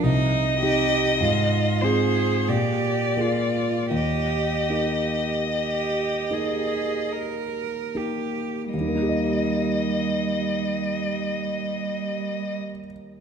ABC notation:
X:1
M:3/4
L:1/8
Q:1/4=39
K:Eb
V:1 name="Violin"
e3 c d2 | e4 z2 | e6 |]
V:2 name="Cello"
E G F A G F | G2 G A B G | G,6 |]
V:3 name="Grand piano"
C,, [CEG] A,, [CFA] B,, [B,FA] | E,, [B,EG]2 [B,EG]2 [B,EG] | [E,,E,B,EGe]6 |]